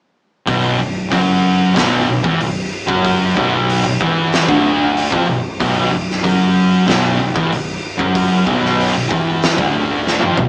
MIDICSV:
0, 0, Header, 1, 4, 480
1, 0, Start_track
1, 0, Key_signature, 2, "minor"
1, 0, Tempo, 638978
1, 358, Time_signature, 4, 2, 24, 8
1, 7879, End_track
2, 0, Start_track
2, 0, Title_t, "Distorted electric guitar"
2, 0, Program_c, 0, 30
2, 355, Note_on_c, 0, 35, 97
2, 361, Note_on_c, 0, 47, 108
2, 589, Note_off_c, 0, 35, 0
2, 594, Note_off_c, 0, 47, 0
2, 598, Note_on_c, 0, 35, 71
2, 792, Note_off_c, 0, 35, 0
2, 834, Note_on_c, 0, 42, 94
2, 843, Note_on_c, 0, 54, 111
2, 1312, Note_off_c, 0, 42, 0
2, 1316, Note_off_c, 0, 54, 0
2, 1316, Note_on_c, 0, 35, 100
2, 1324, Note_on_c, 0, 47, 101
2, 1547, Note_off_c, 0, 35, 0
2, 1556, Note_on_c, 0, 35, 77
2, 1557, Note_off_c, 0, 47, 0
2, 1680, Note_off_c, 0, 35, 0
2, 1683, Note_on_c, 0, 40, 90
2, 1689, Note_on_c, 0, 52, 87
2, 1794, Note_off_c, 0, 40, 0
2, 1797, Note_on_c, 0, 35, 76
2, 1799, Note_off_c, 0, 52, 0
2, 1993, Note_off_c, 0, 35, 0
2, 2171, Note_on_c, 0, 42, 83
2, 2173, Note_on_c, 0, 54, 94
2, 2521, Note_off_c, 0, 42, 0
2, 2522, Note_off_c, 0, 54, 0
2, 2530, Note_on_c, 0, 35, 89
2, 2534, Note_on_c, 0, 47, 98
2, 2881, Note_off_c, 0, 35, 0
2, 2883, Note_off_c, 0, 47, 0
2, 2891, Note_on_c, 0, 35, 79
2, 3008, Note_off_c, 0, 35, 0
2, 3017, Note_on_c, 0, 40, 93
2, 3018, Note_on_c, 0, 52, 110
2, 3364, Note_off_c, 0, 40, 0
2, 3365, Note_off_c, 0, 52, 0
2, 3368, Note_on_c, 0, 38, 90
2, 3370, Note_on_c, 0, 50, 104
2, 3840, Note_off_c, 0, 38, 0
2, 3840, Note_off_c, 0, 50, 0
2, 3849, Note_on_c, 0, 41, 91
2, 3851, Note_on_c, 0, 53, 99
2, 3960, Note_off_c, 0, 41, 0
2, 3961, Note_off_c, 0, 53, 0
2, 3969, Note_on_c, 0, 35, 72
2, 4159, Note_off_c, 0, 35, 0
2, 4208, Note_on_c, 0, 35, 105
2, 4211, Note_on_c, 0, 47, 100
2, 4439, Note_off_c, 0, 35, 0
2, 4441, Note_off_c, 0, 47, 0
2, 4448, Note_on_c, 0, 35, 73
2, 4638, Note_off_c, 0, 35, 0
2, 4683, Note_on_c, 0, 42, 99
2, 4687, Note_on_c, 0, 54, 111
2, 5156, Note_off_c, 0, 42, 0
2, 5158, Note_off_c, 0, 54, 0
2, 5161, Note_on_c, 0, 35, 101
2, 5166, Note_on_c, 0, 47, 106
2, 5389, Note_off_c, 0, 35, 0
2, 5398, Note_off_c, 0, 47, 0
2, 5398, Note_on_c, 0, 35, 72
2, 5521, Note_off_c, 0, 35, 0
2, 5524, Note_on_c, 0, 40, 90
2, 5528, Note_on_c, 0, 52, 89
2, 5636, Note_off_c, 0, 40, 0
2, 5638, Note_off_c, 0, 52, 0
2, 5646, Note_on_c, 0, 35, 78
2, 5836, Note_off_c, 0, 35, 0
2, 6006, Note_on_c, 0, 42, 84
2, 6013, Note_on_c, 0, 54, 93
2, 6356, Note_off_c, 0, 42, 0
2, 6359, Note_off_c, 0, 54, 0
2, 6365, Note_on_c, 0, 35, 85
2, 6368, Note_on_c, 0, 47, 94
2, 6715, Note_off_c, 0, 35, 0
2, 6716, Note_off_c, 0, 47, 0
2, 6727, Note_on_c, 0, 35, 72
2, 6841, Note_off_c, 0, 35, 0
2, 6844, Note_on_c, 0, 40, 85
2, 6848, Note_on_c, 0, 52, 109
2, 7194, Note_off_c, 0, 40, 0
2, 7196, Note_off_c, 0, 52, 0
2, 7199, Note_on_c, 0, 38, 84
2, 7205, Note_on_c, 0, 50, 95
2, 7670, Note_off_c, 0, 38, 0
2, 7673, Note_off_c, 0, 50, 0
2, 7680, Note_on_c, 0, 41, 93
2, 7685, Note_on_c, 0, 53, 110
2, 7791, Note_off_c, 0, 41, 0
2, 7794, Note_off_c, 0, 53, 0
2, 7810, Note_on_c, 0, 35, 78
2, 7879, Note_off_c, 0, 35, 0
2, 7879, End_track
3, 0, Start_track
3, 0, Title_t, "Fretless electric bass"
3, 0, Program_c, 1, 35
3, 356, Note_on_c, 1, 23, 102
3, 581, Note_off_c, 1, 23, 0
3, 593, Note_on_c, 1, 23, 91
3, 820, Note_off_c, 1, 23, 0
3, 842, Note_on_c, 1, 30, 96
3, 1293, Note_off_c, 1, 30, 0
3, 1324, Note_on_c, 1, 23, 89
3, 1547, Note_off_c, 1, 23, 0
3, 1568, Note_on_c, 1, 23, 80
3, 1678, Note_off_c, 1, 23, 0
3, 1683, Note_on_c, 1, 28, 101
3, 1795, Note_off_c, 1, 28, 0
3, 1805, Note_on_c, 1, 23, 83
3, 2028, Note_off_c, 1, 23, 0
3, 2168, Note_on_c, 1, 30, 92
3, 2502, Note_off_c, 1, 30, 0
3, 2528, Note_on_c, 1, 23, 105
3, 2862, Note_off_c, 1, 23, 0
3, 2886, Note_on_c, 1, 23, 80
3, 2997, Note_off_c, 1, 23, 0
3, 3008, Note_on_c, 1, 28, 93
3, 3342, Note_off_c, 1, 28, 0
3, 3371, Note_on_c, 1, 26, 94
3, 3818, Note_off_c, 1, 26, 0
3, 3848, Note_on_c, 1, 29, 96
3, 3959, Note_off_c, 1, 29, 0
3, 3962, Note_on_c, 1, 23, 84
3, 4187, Note_off_c, 1, 23, 0
3, 4208, Note_on_c, 1, 23, 106
3, 4430, Note_off_c, 1, 23, 0
3, 4441, Note_on_c, 1, 23, 87
3, 4666, Note_off_c, 1, 23, 0
3, 4691, Note_on_c, 1, 30, 103
3, 5137, Note_off_c, 1, 30, 0
3, 5170, Note_on_c, 1, 23, 93
3, 5390, Note_off_c, 1, 23, 0
3, 5396, Note_on_c, 1, 23, 82
3, 5511, Note_off_c, 1, 23, 0
3, 5526, Note_on_c, 1, 28, 106
3, 5631, Note_off_c, 1, 28, 0
3, 5635, Note_on_c, 1, 23, 78
3, 5862, Note_off_c, 1, 23, 0
3, 6003, Note_on_c, 1, 30, 95
3, 6337, Note_off_c, 1, 30, 0
3, 6360, Note_on_c, 1, 23, 101
3, 6694, Note_off_c, 1, 23, 0
3, 6721, Note_on_c, 1, 23, 78
3, 6832, Note_off_c, 1, 23, 0
3, 6841, Note_on_c, 1, 28, 98
3, 7174, Note_off_c, 1, 28, 0
3, 7196, Note_on_c, 1, 26, 96
3, 7646, Note_off_c, 1, 26, 0
3, 7678, Note_on_c, 1, 29, 93
3, 7785, Note_off_c, 1, 29, 0
3, 7790, Note_on_c, 1, 23, 81
3, 7879, Note_off_c, 1, 23, 0
3, 7879, End_track
4, 0, Start_track
4, 0, Title_t, "Drums"
4, 356, Note_on_c, 9, 36, 107
4, 359, Note_on_c, 9, 46, 59
4, 431, Note_off_c, 9, 36, 0
4, 434, Note_off_c, 9, 46, 0
4, 839, Note_on_c, 9, 36, 103
4, 842, Note_on_c, 9, 46, 66
4, 914, Note_off_c, 9, 36, 0
4, 918, Note_off_c, 9, 46, 0
4, 1323, Note_on_c, 9, 36, 108
4, 1323, Note_on_c, 9, 46, 64
4, 1333, Note_on_c, 9, 38, 110
4, 1398, Note_off_c, 9, 36, 0
4, 1398, Note_off_c, 9, 46, 0
4, 1408, Note_off_c, 9, 38, 0
4, 1685, Note_on_c, 9, 36, 111
4, 1760, Note_off_c, 9, 36, 0
4, 1808, Note_on_c, 9, 46, 61
4, 1883, Note_off_c, 9, 46, 0
4, 2167, Note_on_c, 9, 36, 104
4, 2242, Note_off_c, 9, 36, 0
4, 2288, Note_on_c, 9, 36, 102
4, 2295, Note_on_c, 9, 46, 61
4, 2363, Note_off_c, 9, 36, 0
4, 2371, Note_off_c, 9, 46, 0
4, 2530, Note_on_c, 9, 36, 111
4, 2606, Note_off_c, 9, 36, 0
4, 2775, Note_on_c, 9, 46, 56
4, 2850, Note_off_c, 9, 46, 0
4, 3011, Note_on_c, 9, 36, 112
4, 3086, Note_off_c, 9, 36, 0
4, 3250, Note_on_c, 9, 46, 59
4, 3259, Note_on_c, 9, 38, 112
4, 3325, Note_off_c, 9, 46, 0
4, 3335, Note_off_c, 9, 38, 0
4, 3370, Note_on_c, 9, 36, 112
4, 3445, Note_off_c, 9, 36, 0
4, 3733, Note_on_c, 9, 46, 54
4, 3808, Note_off_c, 9, 46, 0
4, 3849, Note_on_c, 9, 36, 108
4, 3924, Note_off_c, 9, 36, 0
4, 4210, Note_on_c, 9, 36, 102
4, 4215, Note_on_c, 9, 46, 59
4, 4285, Note_off_c, 9, 36, 0
4, 4290, Note_off_c, 9, 46, 0
4, 4588, Note_on_c, 9, 38, 33
4, 4663, Note_off_c, 9, 38, 0
4, 4689, Note_on_c, 9, 36, 107
4, 4692, Note_on_c, 9, 46, 62
4, 4764, Note_off_c, 9, 36, 0
4, 4767, Note_off_c, 9, 46, 0
4, 5168, Note_on_c, 9, 36, 102
4, 5171, Note_on_c, 9, 46, 65
4, 5180, Note_on_c, 9, 38, 123
4, 5243, Note_off_c, 9, 36, 0
4, 5246, Note_off_c, 9, 46, 0
4, 5255, Note_off_c, 9, 38, 0
4, 5527, Note_on_c, 9, 36, 121
4, 5602, Note_off_c, 9, 36, 0
4, 5650, Note_on_c, 9, 46, 60
4, 5725, Note_off_c, 9, 46, 0
4, 6004, Note_on_c, 9, 36, 103
4, 6079, Note_off_c, 9, 36, 0
4, 6124, Note_on_c, 9, 36, 102
4, 6126, Note_on_c, 9, 46, 65
4, 6199, Note_off_c, 9, 36, 0
4, 6201, Note_off_c, 9, 46, 0
4, 6363, Note_on_c, 9, 36, 103
4, 6438, Note_off_c, 9, 36, 0
4, 6502, Note_on_c, 9, 38, 32
4, 6577, Note_off_c, 9, 38, 0
4, 6612, Note_on_c, 9, 46, 62
4, 6687, Note_off_c, 9, 46, 0
4, 6841, Note_on_c, 9, 36, 108
4, 6916, Note_off_c, 9, 36, 0
4, 7080, Note_on_c, 9, 46, 63
4, 7090, Note_on_c, 9, 38, 111
4, 7155, Note_off_c, 9, 46, 0
4, 7165, Note_off_c, 9, 38, 0
4, 7199, Note_on_c, 9, 36, 111
4, 7274, Note_off_c, 9, 36, 0
4, 7567, Note_on_c, 9, 38, 64
4, 7642, Note_off_c, 9, 38, 0
4, 7681, Note_on_c, 9, 48, 68
4, 7756, Note_off_c, 9, 48, 0
4, 7793, Note_on_c, 9, 45, 94
4, 7868, Note_off_c, 9, 45, 0
4, 7879, End_track
0, 0, End_of_file